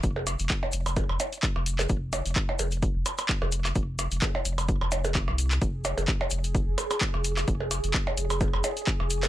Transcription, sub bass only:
X:1
M:4/4
L:1/16
Q:"Swing 16ths" 1/4=129
K:Fm
V:1 name="Sub bass" clef=bass
F,,,3 F,,, z2 F,,,3 F,,, z3 F,,,3 | F,,,3 F,,, z2 F,,,3 F,,, z3 F,,,3 | F,,,3 F,,, z2 F,,,3 F,,,4 C,,3 | F,,,3 F,,, z2 F,,,3 F,,, z3 F,,,3 |
F,,,3 F,,, z2 F,,,3 F,,, z3 F,,,3 |]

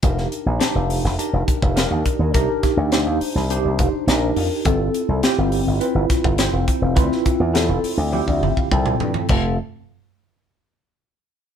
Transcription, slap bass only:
X:1
M:4/4
L:1/16
Q:1/4=104
K:Gm
V:1 name="Slap bass" clef=bass
F,,,2 z B,,, z F,,,2 F,,, z F,,, z F,,,2 E,, z E,, | C,, z2 D,,2 E,, z C,,2 C,, F,,, z B,,,2 F,, z | G,,,2 z C,, z G,,,2 G,,, z G,,, z G,,,2 F,,, z F,,, | D,, z2 =E,,2 F,,, z D,,2 D,, G,,, z C,,2 G,, z |
F,,,2 z12 z2 |]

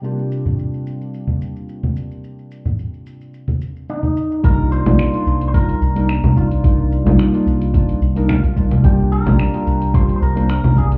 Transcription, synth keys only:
X:1
M:4/4
L:1/16
Q:"Swing 16ths" 1/4=109
K:Cm
V:1 name="Synth keys"
[C,G,B,DFG]16- | [C,G,B,DFG]12- [C,G,B,DFG]2 z2 | [G,B,DEF]3 [G,B,DEF]2 [G,B,DEF]3 [G,B,DEF]2 z [G,B,DEB] z2 [G,B,DEF]2 | [G,B,DEF]3 [G,B,DEF]2 [G,B,DEF]3 [G,B,DEF]2 z [G,B,DEB] z2 [G,B,DEF]2 |
[G,B,DFG]3 [G,B,DFG]2 [G,B,DFG]3 [G,B,DFG]2 z [G,B,DFc] z2 [G,B,DFG]2 |]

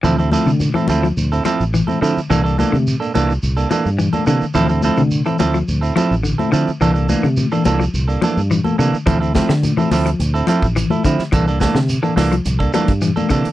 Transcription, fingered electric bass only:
X:1
M:4/4
L:1/16
Q:1/4=106
K:Dm
V:1 name="Fingered electric bass" clef=bass
D,,3 D,2 z D,,2 D,,2 z A,,,2 z D, z | C,,3 C,2 z C,,2 C,,2 z G,,2 z C, z | D,,3 D,2 z D,,2 D,,2 z A,,,2 z D, z | C,,3 C,2 z C,,2 C,,2 z G,,2 z C, z |
D,,3 D,2 z D,,2 D,,2 z A,,,2 z D, z | C,,3 C,2 z C,,2 C,,2 z G,,2 z C, z |]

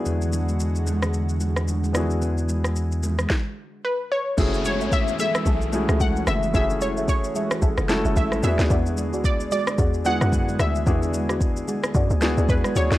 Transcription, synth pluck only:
X:1
M:4/4
L:1/8
Q:"Swing 16ths" 1/4=111
K:F#m
V:1 name="Synth pluck"
z8 | z6 B c- | c c e e2 z f e | e c c2 z2 e e- |
e2 d d2 f2 e- | e2 z4 B c |]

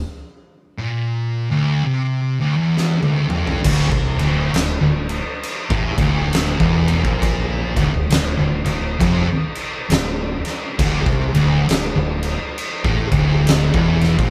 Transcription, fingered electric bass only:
X:1
M:4/4
L:1/16
Q:"Swing" 1/4=67
K:Dm
V:1 name="Fingered electric bass" clef=bass
z16 | D,,, C,, D,,,2 D,,, D,,,2 z2 A,,, D,,,3 E,,,2 B,,,- | B,,,2 D,,, D,,, D,,, D,,, D,,,2 F,,, z3 D,,,2 z2 | D,,, C,, D,,,2 D,,, D,,,2 z2 A,,, D,,,3 E,,,2 B,,, |]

